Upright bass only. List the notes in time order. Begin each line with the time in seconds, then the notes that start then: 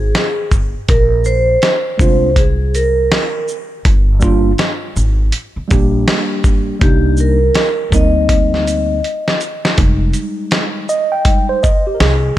Already playing: G#1
0.52 G1
0.89 A#1
2.00 C2
3.85 G1
4.96 G#1
5.56 muted upright bass stroke
5.71 A#1
6.44 G#1
6.82 C2
7.92 D2
9.78 F1
12.00 C2